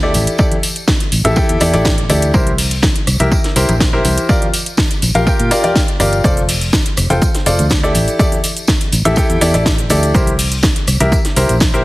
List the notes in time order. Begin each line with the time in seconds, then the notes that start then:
Already playing: D2
0.03 E4 G4 A4 D5
0.14 A1, open hi-hat, tambourine, high conga
0.27 closed hi-hat, tambourine
0.38 E4 G4 A4 D5, kick, tambourine
0.51 closed hi-hat, high conga
0.63 open hi-hat, tambourine
0.76 closed hi-hat, tambourine
0.88 kick, cross-stick, snare, tambourine, high conga
1.00 closed hi-hat
1.12 A1, open hi-hat, tambourine
1.24 A1 E4 G4 A4 E5, closed hi-hat, tambourine, high conga
1.36 E4 G4 A4 G5, kick, tambourine
1.49 E2, closed hi-hat
1.60 E2 E4 G4 A4 D5, open hi-hat, tambourine
1.73 A1 E4 G4 A4 D5, closed hi-hat, tambourine, high conga
1.85 kick, snare, tambourine
1.98 closed hi-hat
2.09 D2 E4 G4 A4 D5, cross-stick, open hi-hat, tambourine, high conga
2.22 closed hi-hat, tambourine
2.34 C2 E4 G4 A#4 C5, kick, tambourine
2.47 closed hi-hat, high conga
2.58 open hi-hat, tambourine
2.71 closed hi-hat, tambourine
2.82 kick, cross-stick, snare, tambourine, high conga
2.95 closed hi-hat
3.07 C2, cross-stick, open hi-hat, tambourine
3.19 C2 E4 G4 A#4 E5, closed hi-hat, tambourine, high conga
3.31 kick, tambourine
3.44 snare, closed hi-hat
3.56 C2 E4 G4 A#4 C5, open hi-hat, tambourine
3.69 A#1, closed hi-hat, tambourine, high conga
3.80 kick, snare, tambourine
3.93 E4 G4 A#4 C5
4.05 C2, open hi-hat, tambourine, high conga
4.17 closed hi-hat, tambourine
4.29 F4 G4 A#4 D5, kick, tambourine
4.42 closed hi-hat, high conga
4.54 open hi-hat, tambourine
4.66 closed hi-hat, tambourine
4.77 kick, cross-stick, snare, tambourine, high conga
4.91 closed hi-hat, tambourine
5.02 A#1, open hi-hat, tambourine
5.14 A#1 F4 G4 A#4 F5, closed hi-hat, tambourine, high conga
5.27 F4 G4 A#4 G5, kick, tambourine
5.39 A#2, closed hi-hat
5.51 F4 G4 A#4 D5, open hi-hat, tambourine
5.64 F4 G4 A#4 D5, closed hi-hat, tambourine, high conga
5.75 kick, snare, tambourine
5.88 closed hi-hat
6.00 G1 F4 G4 A#4 D5, cross-stick, open hi-hat, tambourine, high conga
6.13 closed hi-hat, tambourine
6.24 F1 F4 A4 C5 D5, kick, tambourine, cabasa
6.37 closed hi-hat, high conga, cabasa
6.49 open hi-hat, tambourine, cabasa
6.61 closed hi-hat, tambourine, cabasa
6.73 kick, cross-stick, snare, tambourine, high conga, cabasa
6.86 closed hi-hat
6.97 F1, cross-stick, open hi-hat, tambourine, cabasa
7.10 F1 F4 A4 C5 G5, closed hi-hat, tambourine, high conga, cabasa
7.22 kick, tambourine, cabasa
7.35 snare, closed hi-hat, cabasa
7.46 F1 F4 A4 C5 D5, open hi-hat, tambourine, cabasa
7.59 D2, closed hi-hat, tambourine, high conga, cabasa
7.70 kick, snare, tambourine, cabasa
7.83 E4 G4 A4 D5, cabasa
7.95 A1, open hi-hat, tambourine, high conga, cabasa
8.08 closed hi-hat, tambourine, cabasa
8.19 E4 G4 A4 D5, kick, tambourine, cabasa
8.32 closed hi-hat, high conga, cabasa
8.44 open hi-hat, tambourine, cabasa
8.57 closed hi-hat, tambourine, cabasa
8.68 kick, cross-stick, snare, tambourine, high conga, cabasa
8.81 closed hi-hat
8.92 A1, open hi-hat, tambourine, cabasa
9.05 A1 E4 G4 A4 E5, closed hi-hat, tambourine, high conga, cabasa
9.16 E4 G4 A4 G5, kick, tambourine, cabasa
9.30 E2, closed hi-hat, cabasa
9.41 E2 E4 G4 A4 D5, open hi-hat, tambourine, cabasa
9.54 A1 E4 G4 A4 D5, closed hi-hat, tambourine, high conga, cabasa
9.66 kick, snare, tambourine, cabasa
9.78 closed hi-hat, cabasa
9.90 D2 E4 G4 A4 D5, cross-stick, open hi-hat, tambourine, high conga, cabasa
10.03 closed hi-hat, tambourine, cabasa
10.14 E4 G4 A#4 C5, kick, tambourine, cabasa
10.26 closed hi-hat, high conga, cabasa
10.39 open hi-hat, tambourine, cabasa
10.52 closed hi-hat, tambourine, cabasa
10.63 kick, cross-stick, snare, tambourine, high conga, cabasa
10.76 closed hi-hat
10.87 C2, cross-stick, open hi-hat, tambourine, cabasa
11.00 C2 E4 G4 A#4 E5, closed hi-hat, tambourine, high conga, cabasa
11.12 kick, tambourine, cabasa
11.25 snare, closed hi-hat, cabasa
11.36 C2 E4 G4 A#4 C5, open hi-hat, tambourine, cabasa
11.49 A#1, closed hi-hat, tambourine, high conga, cabasa
11.60 kick, snare, tambourine, cabasa
11.74 E4 G4 A#4 C5, cabasa